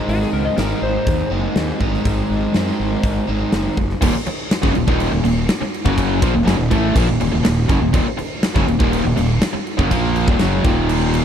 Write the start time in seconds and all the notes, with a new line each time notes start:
Already playing: G#2 D#3 G#3 C4 D#4
0.08 G#1 F#4, open hi-hat
0.21 G#4, snare
0.33 C#2 A#4
0.45 D#5
0.56 G#1 G#2 D#3 G#3 C4 D#4 A#4, snare, open hi-hat
0.82 G#1 C5
1.07 D#2, kick, open hi-hat
1.30 F#1 G#2 D#3 G#3 C4 D#4
1.56 D#2, snare, open hi-hat
1.79 G#1 G#2 D#3 G#3 C4 D#4, kick
1.94 snare
2.05 G#1, kick, open hi-hat
2.30 G#1
2.53 F#2 G#2 D#3 G#3 C4 D#4, snare, open hi-hat
2.80 G#1
3.03 G#1, kick, open hi-hat
3.27 G#1 G#2 D#3 G#3 C4 D#4
3.52 F#1, snare, open hi-hat
3.77 F#1, kick
3.90 snare
4.02 D#1 D#2 A#2, kick, crash
4.14 muted distorted electric guitar stroke, muted fingered electric bass stroke, muted overdriven electric guitar stroke
4.26 muted fingered electric bass stroke, muted overdriven electric guitar stroke, muted distorted electric guitar stroke, crash
4.51 snare, crash
4.63 F#1 F#2 C#3, kick
4.75 D#1 D#2 A#2, crash
4.87 D#1 D#2 A#2 D#3, kick
5.00 crash
5.12 D#1 D#2 A#2
5.24 D#1 D#2 A#2, crash
5.49 snare, crash
5.61 muted overdriven electric guitar stroke, muted fingered electric bass stroke, muted distorted electric guitar stroke, snare
5.74 crash
5.85 F#1 F#2 C#3 F#3, kick
5.98 kick, crash
6.21 A#1 A#2 F3, kick, crash
6.34 D#1 D#2 A#2
6.46 F#1 F#2 C#3, snare, crash
6.58 D#1 D#2 A#2
6.70 A1 A2 E3 A3, kick, crash
6.95 A#1 A#2 F3, kick, crash
7.08 D#1 D#2 A#2
7.20 D#1 D#2 A#2, crash
7.32 D#1 D#2 A#2
7.45 D#1 D#2 A#2, snare, crash
7.69 F#1 F#2 C#3, kick, crash
7.81 D#1 D#2 A#2
7.93 D#1 D#2 A#2, kick, crash
8.06 muted distorted electric guitar stroke, muted overdriven electric guitar stroke, muted fingered electric bass stroke
8.18 muted distorted electric guitar stroke, muted overdriven electric guitar stroke, muted fingered electric bass stroke, crash
8.43 snare, crash
8.55 F#1 F#2 C#3, kick
8.67 D#1 D#2 A#2, crash
8.80 D#1 D#2 A#2 D#3, kick
8.93 crash
9.05 D#1 D#2 A#2
9.17 D#1 D#2 A#2, crash
9.42 snare, crash
9.53 muted distorted electric guitar stroke, muted overdriven electric guitar stroke, muted fingered electric bass stroke
9.67 crash
9.78 F#1 F#2 C#3, kick
9.90 A#1 A#2 F3 A#3, kick, crash
10.16 crash
10.27 D#1 D#2 A#2, kick
10.39 F#1 F#2 C#3 F#3, snare, crash
10.64 D#1 D#2 A#2 D#3, kick, crash
10.89 crash
11.14 crash